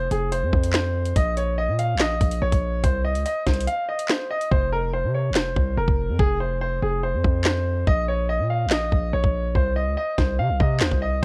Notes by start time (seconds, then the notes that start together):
0.11 F1 G#4, closed hi-hat
0.32 C5, closed hi-hat
0.42 F2
0.53 F2, kick
0.64 closed hi-hat
0.73 C5, snare, clap
1.05 closed hi-hat
1.16 A#1 D#5, kick, closed hi-hat
1.37 C#5, closed hi-hat
1.58 D#5
1.68 A#2
1.79 F5, closed hi-hat
1.95 A#1
1.99 D#5, snare, clap, closed hi-hat
2.21 A#1, kick, closed hi-hat
2.31 closed hi-hat
2.42 A#1 C#5
2.52 A#1, kick, closed hi-hat
2.84 C2 C5, kick, closed hi-hat
3.05 D#5
3.15 C#2, closed hi-hat
3.26 D#5, closed hi-hat
3.47 C2 C5, kick, snare, closed hi-hat
3.54 closed hi-hat
3.61 closed hi-hat
3.68 F5, closed hi-hat
3.89 D#5
3.99 closed hi-hat
4.09 C5, snare, clap
4.31 D#5
4.41 closed hi-hat
4.51 F1 C5, kick
4.73 A#4
4.93 C5
5.04 C3
5.14 C#5
5.30 F1
5.35 C5, snare, clap
5.56 C2, kick
5.77 F1 A#4
5.88 F1, kick
6.09 F2
6.19 F1 G#4, kick
6.40 C5
6.61 C5
6.82 F1 G#4
7.03 C5
7.14 F2
7.24 F2, kick
7.45 C5, snare, clap
7.87 A#1 D#5, kick
8.08 C#5
8.29 D#5
8.40 A#2
8.50 F5
8.66 A#1
8.70 D#5, snare, clap
8.92 A#1, kick
9.13 A#1 C#5
9.24 A#1, kick
9.55 C2 C5, kick
9.76 D#5
9.87 C#2
9.97 D#5
10.18 C2 C5, kick, snare
10.39 C3 F5
10.50 C2
10.60 C3 D#5, kick
10.80 D#2 C5, snare, clap
10.91 C2, kick
11.02 D#5